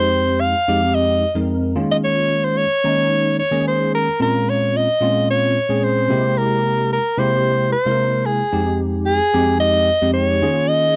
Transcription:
Already playing: tine electric piano F2 G#3 C4 D#4 G4, soprano saxophone C5
0.40 soprano saxophone F5
0.68 tine electric piano F2 G#3 C4 D#4 G4
0.94 soprano saxophone D#5
1.35 tine electric piano F2 G#3 C4 D#4 A#4
1.76 tine electric piano D#3 G#3 A#3 C#4 F4
1.91 soprano saxophone D#5
2.04 soprano saxophone C#5
2.44 soprano saxophone C5
2.58 soprano saxophone C#5
2.84 tine electric piano D#3 G#3 A#3 C#4 D#4
3.39 soprano saxophone C#5
3.51 tine electric piano D#3 G#3 A#3 C#4 G#4
3.68 soprano saxophone C5
3.95 soprano saxophone A#4
4.19 tine electric piano A#2 G#3 C4 C#4 F4, soprano saxophone A#4
4.49 soprano saxophone C#5
4.76 soprano saxophone D#5
5.01 tine electric piano A#2 G#3 C4 C#4 F4
5.30 soprano saxophone C#5
5.69 tine electric piano A#2 G#3 C4 C#4 G#4
5.84 soprano saxophone C5
6.09 tine electric piano C3 G#3 A#3 E4 G4
6.38 soprano saxophone A#4
6.93 soprano saxophone A#4
7.17 tine electric piano C3 G#3 A#3 E4 G4, soprano saxophone C5
7.72 soprano saxophone C5
7.85 tine electric piano C3 G#3 A#3 E4 A#4
8.26 soprano saxophone G#4
8.52 tine electric piano F2 G#3 C4 D#4 G4
9.05 soprano saxophone G#4
9.33 tine electric piano F2 G#3 C4 D#4 G4
9.60 soprano saxophone D#5
10.02 tine electric piano F2 G#3 C4 D#4 G4
10.13 soprano saxophone C#5
10.42 tine electric piano D#3 A#3 C#4 F4 G#4
10.68 soprano saxophone D#5

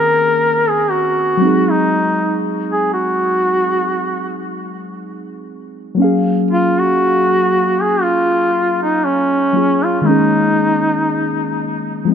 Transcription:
Already playing: synth keys D#3 A#3 C4 C#4 G#4, duduk A#4
0.69 duduk G#4
0.91 duduk F#4
1.37 synth keys F#3 G#3
1.42 synth keys C4 D#4
1.46 synth keys G#4
1.71 duduk D#4
2.72 duduk G#4
2.94 duduk F#4
5.95 synth keys F#3 A#3
5.99 synth keys C#4 F5
6.04 synth keys G#4
6.51 duduk F4
6.80 duduk F#4
7.82 duduk G#4
8.03 duduk F4
8.83 duduk D#4
9.05 duduk C#4
9.53 synth keys F#3 A#3 C#4 F4
9.57 synth keys G#4
9.85 duduk F4
10.01 synth keys D#3 G#3, duduk F4
10.06 synth keys A#3 C#4, duduk D#4
10.11 synth keys G#4
12.05 synth keys F3 G#3
12.09 synth keys C4

